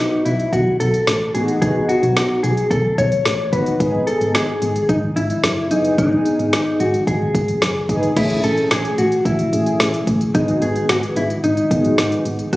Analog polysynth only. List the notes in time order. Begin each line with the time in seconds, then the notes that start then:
Already playing: B3 D#4 F#4
1.35 B3 D#4 F#4
1.62 B3 D#4 F#4
3.53 B3 D#4 F#4
3.80 B3 D#4 G#4
5.71 B3 D#4 G#4
5.98 B3 D#4 G#4
7.89 B3 D#4 G#4
8.16 A3 C#4 G#4
9.53 A3 C#4 G#4
10.35 B3 F#4 G#4
11.71 B3 F#4 G#4
12.53 B3 D#4 A4